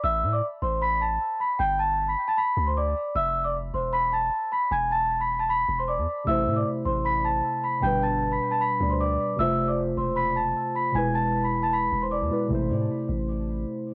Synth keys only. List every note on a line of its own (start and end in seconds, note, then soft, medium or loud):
6.24 7.78 C3 medium
6.24 7.79 A3 medium
6.28 7.81 E4 medium
6.28 7.82 C5 medium
7.80 8.77 B2 medium
7.80 8.78 G3 medium
7.84 8.79 D4 medium
7.84 8.80 B4 medium
8.79 9.38 B2 soft
8.79 9.39 G3 soft
8.79 9.39 D4 soft
8.79 9.40 D5 medium
9.36 10.90 C3 medium
9.36 10.91 A3 medium
9.40 10.92 F4 medium
9.40 10.93 C5 medium
10.92 12.27 B2 medium
10.92 12.28 G#3 medium
10.96 12.29 E4 medium
10.96 12.30 B4 medium
12.30 12.50 B2 medium
12.30 12.50 G#3 soft
12.30 12.51 E4 soft
12.30 12.51 B4 medium
12.48 13.94 C3 medium
12.48 13.94 A3 medium
12.52 13.94 E4 medium
12.52 13.94 C5 medium